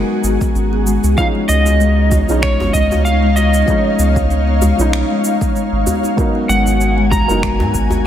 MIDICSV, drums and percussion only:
0, 0, Header, 1, 3, 480
1, 0, Start_track
1, 0, Tempo, 625000
1, 905, Time_signature, 4, 2, 24, 8
1, 6197, End_track
2, 0, Start_track
2, 0, Title_t, "Djembe"
2, 318, Note_on_c, 9, 62, 50
2, 395, Note_off_c, 9, 62, 0
2, 1275, Note_on_c, 9, 63, 76
2, 1351, Note_off_c, 9, 63, 0
2, 1627, Note_on_c, 9, 64, 92
2, 1704, Note_off_c, 9, 64, 0
2, 1999, Note_on_c, 9, 62, 65
2, 2006, Note_on_c, 9, 64, 92
2, 2076, Note_off_c, 9, 62, 0
2, 2083, Note_off_c, 9, 64, 0
2, 2109, Note_on_c, 9, 63, 37
2, 2186, Note_off_c, 9, 63, 0
2, 2236, Note_on_c, 9, 62, 47
2, 2244, Note_on_c, 9, 64, 98
2, 2313, Note_off_c, 9, 62, 0
2, 2321, Note_off_c, 9, 64, 0
2, 2591, Note_on_c, 9, 63, 66
2, 2667, Note_off_c, 9, 63, 0
2, 3200, Note_on_c, 9, 63, 65
2, 3277, Note_off_c, 9, 63, 0
2, 3547, Note_on_c, 9, 64, 97
2, 3548, Note_on_c, 9, 62, 33
2, 3624, Note_off_c, 9, 64, 0
2, 3625, Note_off_c, 9, 62, 0
2, 4157, Note_on_c, 9, 62, 47
2, 4234, Note_off_c, 9, 62, 0
2, 4506, Note_on_c, 9, 64, 91
2, 4582, Note_off_c, 9, 64, 0
2, 4633, Note_on_c, 9, 63, 67
2, 4710, Note_off_c, 9, 63, 0
2, 5113, Note_on_c, 9, 63, 59
2, 5190, Note_off_c, 9, 63, 0
2, 5463, Note_on_c, 9, 64, 91
2, 5540, Note_off_c, 9, 64, 0
2, 5835, Note_on_c, 9, 64, 92
2, 5838, Note_on_c, 9, 62, 66
2, 5911, Note_off_c, 9, 64, 0
2, 5915, Note_off_c, 9, 62, 0
2, 5947, Note_on_c, 9, 63, 40
2, 6023, Note_off_c, 9, 63, 0
2, 6070, Note_on_c, 9, 64, 92
2, 6072, Note_on_c, 9, 62, 54
2, 6146, Note_off_c, 9, 64, 0
2, 6148, Note_off_c, 9, 62, 0
2, 6197, End_track
3, 0, Start_track
3, 0, Title_t, "Drums"
3, 185, Note_on_c, 9, 82, 83
3, 262, Note_off_c, 9, 82, 0
3, 316, Note_on_c, 9, 36, 113
3, 318, Note_on_c, 9, 82, 49
3, 393, Note_off_c, 9, 36, 0
3, 395, Note_off_c, 9, 82, 0
3, 428, Note_on_c, 9, 82, 35
3, 505, Note_off_c, 9, 82, 0
3, 667, Note_on_c, 9, 82, 82
3, 744, Note_off_c, 9, 82, 0
3, 798, Note_on_c, 9, 82, 47
3, 875, Note_off_c, 9, 82, 0
3, 904, Note_on_c, 9, 82, 36
3, 905, Note_on_c, 9, 36, 116
3, 981, Note_off_c, 9, 82, 0
3, 982, Note_off_c, 9, 36, 0
3, 1144, Note_on_c, 9, 82, 85
3, 1221, Note_off_c, 9, 82, 0
3, 1276, Note_on_c, 9, 82, 49
3, 1353, Note_off_c, 9, 82, 0
3, 1387, Note_on_c, 9, 82, 34
3, 1464, Note_off_c, 9, 82, 0
3, 1625, Note_on_c, 9, 36, 109
3, 1626, Note_on_c, 9, 82, 89
3, 1702, Note_off_c, 9, 36, 0
3, 1703, Note_off_c, 9, 82, 0
3, 1757, Note_on_c, 9, 82, 46
3, 1834, Note_off_c, 9, 82, 0
3, 1864, Note_on_c, 9, 26, 83
3, 1865, Note_on_c, 9, 36, 101
3, 1866, Note_on_c, 9, 82, 34
3, 1941, Note_off_c, 9, 26, 0
3, 1942, Note_off_c, 9, 36, 0
3, 1943, Note_off_c, 9, 82, 0
3, 2105, Note_on_c, 9, 36, 67
3, 2106, Note_on_c, 9, 82, 83
3, 2182, Note_off_c, 9, 36, 0
3, 2183, Note_off_c, 9, 82, 0
3, 2239, Note_on_c, 9, 82, 48
3, 2316, Note_off_c, 9, 82, 0
3, 2347, Note_on_c, 9, 82, 33
3, 2424, Note_off_c, 9, 82, 0
3, 2586, Note_on_c, 9, 82, 84
3, 2663, Note_off_c, 9, 82, 0
3, 2718, Note_on_c, 9, 82, 46
3, 2794, Note_off_c, 9, 82, 0
3, 2825, Note_on_c, 9, 36, 111
3, 2826, Note_on_c, 9, 82, 36
3, 2902, Note_off_c, 9, 36, 0
3, 2903, Note_off_c, 9, 82, 0
3, 3066, Note_on_c, 9, 82, 87
3, 3143, Note_off_c, 9, 82, 0
3, 3197, Note_on_c, 9, 36, 101
3, 3199, Note_on_c, 9, 82, 46
3, 3273, Note_off_c, 9, 36, 0
3, 3276, Note_off_c, 9, 82, 0
3, 3308, Note_on_c, 9, 82, 32
3, 3385, Note_off_c, 9, 82, 0
3, 3547, Note_on_c, 9, 82, 86
3, 3624, Note_off_c, 9, 82, 0
3, 3682, Note_on_c, 9, 82, 48
3, 3759, Note_off_c, 9, 82, 0
3, 3789, Note_on_c, 9, 26, 75
3, 3790, Note_on_c, 9, 82, 34
3, 3866, Note_off_c, 9, 26, 0
3, 3867, Note_off_c, 9, 82, 0
3, 4029, Note_on_c, 9, 82, 83
3, 4105, Note_off_c, 9, 82, 0
3, 4157, Note_on_c, 9, 36, 110
3, 4161, Note_on_c, 9, 82, 47
3, 4234, Note_off_c, 9, 36, 0
3, 4237, Note_off_c, 9, 82, 0
3, 4270, Note_on_c, 9, 82, 36
3, 4347, Note_off_c, 9, 82, 0
3, 4508, Note_on_c, 9, 82, 82
3, 4585, Note_off_c, 9, 82, 0
3, 4642, Note_on_c, 9, 82, 46
3, 4719, Note_off_c, 9, 82, 0
3, 4746, Note_on_c, 9, 36, 118
3, 4750, Note_on_c, 9, 82, 32
3, 4823, Note_off_c, 9, 36, 0
3, 4827, Note_off_c, 9, 82, 0
3, 4990, Note_on_c, 9, 82, 76
3, 5067, Note_off_c, 9, 82, 0
3, 5122, Note_on_c, 9, 82, 43
3, 5199, Note_off_c, 9, 82, 0
3, 5228, Note_on_c, 9, 82, 32
3, 5305, Note_off_c, 9, 82, 0
3, 5466, Note_on_c, 9, 36, 100
3, 5471, Note_on_c, 9, 82, 81
3, 5543, Note_off_c, 9, 36, 0
3, 5548, Note_off_c, 9, 82, 0
3, 5602, Note_on_c, 9, 82, 45
3, 5679, Note_off_c, 9, 82, 0
3, 5706, Note_on_c, 9, 36, 98
3, 5707, Note_on_c, 9, 26, 77
3, 5709, Note_on_c, 9, 82, 34
3, 5783, Note_off_c, 9, 36, 0
3, 5784, Note_off_c, 9, 26, 0
3, 5785, Note_off_c, 9, 82, 0
3, 5946, Note_on_c, 9, 36, 63
3, 5949, Note_on_c, 9, 82, 79
3, 6023, Note_off_c, 9, 36, 0
3, 6025, Note_off_c, 9, 82, 0
3, 6079, Note_on_c, 9, 82, 49
3, 6156, Note_off_c, 9, 82, 0
3, 6197, End_track
0, 0, End_of_file